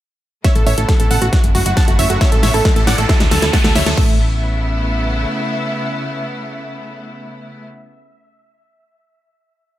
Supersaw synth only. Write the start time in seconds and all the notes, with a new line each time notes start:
0.44 C#5 E5
0.55 A4
0.66 C#5 E5
0.78 A4
0.89 A4
1.00 A4
1.11 A4 F#5
1.22 F#4
1.33 F#4
1.55 F#4
1.66 F#4
1.77 F#5 A5
1.88 F#4
1.99 C#5 E5
2.10 F#4
2.21 C#5 E5
2.32 A4
2.43 C#5 E5
2.54 A4
2.65 A4
2.76 A4
2.87 D5 F#5
2.98 A4
3.09 A4
3.31 A4
3.42 A4
3.53 F#5 A5
3.64 A4
3.75 C#5 E5
3.86 A4
3.97 E5